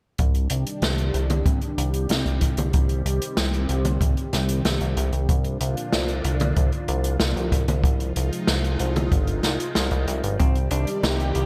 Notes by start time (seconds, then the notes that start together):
0.18 C2 C3 D#3 G3 D4 G4, kick, closed hi-hat
0.35 closed hi-hat
0.50 C2, closed hi-hat
0.67 closed hi-hat
0.82 C2, snare, closed hi-hat
0.98 closed hi-hat
1.14 C2, closed hi-hat
1.30 closed hi-hat, mid tom
1.46 C2, kick, closed hi-hat
1.61 closed hi-hat
1.78 C2, closed hi-hat
1.94 closed hi-hat
2.09 C2, snare, closed hi-hat
2.26 C2, closed hi-hat
2.41 C2, kick, closed hi-hat
2.57 C2, closed hi-hat, mid tom
2.73 C2 C4, kick, closed hi-hat
2.89 closed hi-hat
3.05 C2, closed hi-hat
3.22 closed hi-hat
3.37 C2, snare, closed hi-hat
3.54 closed hi-hat
3.69 C2, closed hi-hat
3.85 closed hi-hat, mid tom
4.01 C2, kick, closed hi-hat
4.17 closed hi-hat
4.33 C2, snare, closed hi-hat
4.49 closed hi-hat
4.65 C2, snare, closed hi-hat
4.81 C2, closed hi-hat
4.97 C2, closed hi-hat
5.13 C2, closed hi-hat
5.29 C2 A#2 D3 F3 D4 F4, kick, closed hi-hat
5.44 closed hi-hat
5.61 C2, closed hi-hat
5.77 closed hi-hat
5.93 C2, snare, closed hi-hat
6.08 closed hi-hat
6.24 C2, closed hi-hat
6.40 closed hi-hat, mid tom
6.56 C2, kick, closed hi-hat
6.72 closed hi-hat
6.88 C2, closed hi-hat
7.04 closed hi-hat
7.20 C2, snare, closed hi-hat
7.36 C2, closed hi-hat
7.52 C2, kick, closed hi-hat
7.68 C2, closed hi-hat, mid tom
7.84 C2 C3 G#3 D#4 F4, kick, closed hi-hat
8.00 closed hi-hat
8.16 C2, closed hi-hat
8.33 closed hi-hat
8.47 C2, snare, closed hi-hat
8.64 closed hi-hat
8.79 C2, closed hi-hat
8.96 closed hi-hat, mid tom
9.12 G1, kick, closed hi-hat
9.27 closed hi-hat
9.43 C2, snare, closed hi-hat
9.60 closed hi-hat
9.75 C2, snare, closed hi-hat
9.91 C2, closed hi-hat
10.08 C2, closed hi-hat
10.23 G1, closed hi-hat
10.40 C2 C3 D#3 G3 C4 G4 D5, kick, closed hi-hat
10.55 closed hi-hat
10.71 C2 D4, closed hi-hat
10.87 closed hi-hat
11.03 C2 D#4 G4, snare, closed hi-hat
11.20 closed hi-hat
11.35 C2 G4, closed hi-hat